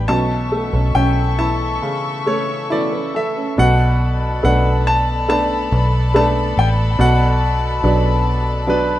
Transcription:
Already playing: felt piano G3 B3
0.07 fingered electric bass B1, nylon-string guitar B2 E3 A3 C#4 B4, felt piano B2, string section A4 E5 C#6, grand piano A5
0.52 felt piano A3
0.72 fingered electric bass B1, nylon-string guitar A3 C#4 B4
0.94 fingered electric bass B1, nylon-string guitar B2 E3 A3 C#4 B4, felt piano C#4, grand piano G5
1.37 nylon-string guitar E3 A3 C#4 B4, felt piano E4, grand piano A5
1.82 felt piano C#3
2.26 nylon-string guitar E3 A3 C#4 B4, felt piano A3, grand piano C#5
2.70 nylon-string guitar B2 E3 A3 C#4 B4, felt piano E4, grand piano D5
2.92 nylon-string guitar A3 C#4 B4
3.14 nylon-string guitar E3 A3 C#4 B4, felt piano A4, grand piano E5
3.36 nylon-string guitar A3 C#4 B4
3.58 fingered electric bass B1, felt piano B2, string section A4 D5 A5 B5, grand piano F#5
4.43 fingered electric bass B1, felt piano A3 B3 D4, grand piano F#5
4.87 grand piano A5
5.28 felt piano A3 B3 D4, grand piano A5
5.72 fingered electric bass B1
6.14 felt piano A3 B3 D4, grand piano A5
6.57 fingered electric bass A1, grand piano G5
6.99 fingered electric bass B1, felt piano B2, grand piano F#5
7.83 fingered electric bass B1, felt piano F#3 B3 D4
8.67 felt piano F#3 B3 D4, grand piano B4

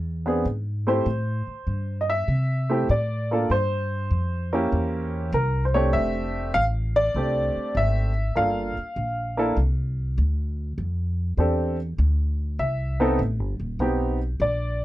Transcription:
Already playing: upright bass E2
0.26 upright piano B3 C4 D4 G#4
0.45 upright bass G#2
0.87 upright piano A3 C4 E4 G4 C5
1.06 upright bass A2
1.47 muted upright bass stroke
1.67 upright bass G2
2.01 upright piano D#5
2.10 upright piano E5
2.28 upright bass C3
2.70 upright piano A3 C4 E4 G4
2.89 upright bass A2, upright piano D5
3.31 upright piano A#3 D4 F4 A4
3.50 upright bass G2, upright piano C5
4.11 upright bass F2
4.53 upright piano A#3 C#4 E4 G4
4.72 upright bass E2
5.33 upright bass C2, upright piano A#4
5.65 upright piano C5
5.74 upright piano A3 C4 D4 G4 C#5
5.93 upright bass F1, upright piano E5
6.54 upright bass A1, upright piano F5
6.96 upright piano D5
7.14 upright bass C2, upright piano A3 C4 D4 G4
7.56 muted upright bass stroke
7.75 upright bass G#1, upright piano E5
8.35 upright bass G1, upright piano A#3 D4 F4 A4 F5
8.77 muted upright bass stroke
8.96 upright bass A#1
9.37 upright piano A#3 D4 E4 A4
9.57 upright bass C2
10.18 upright bass D2
10.78 upright bass F2
11.37 upright bass E2, upright piano C4 D4 G4 A4
11.98 upright bass D2
12.59 upright bass C2, upright piano E5
13.00 upright piano B3 C4 D#4 A4
13.19 upright bass A1
13.39 upright bass G1
13.60 upright bass D#1
13.79 upright bass B1, upright piano B3 C4 D#4 G4
14.40 upright bass A#1, upright piano D5

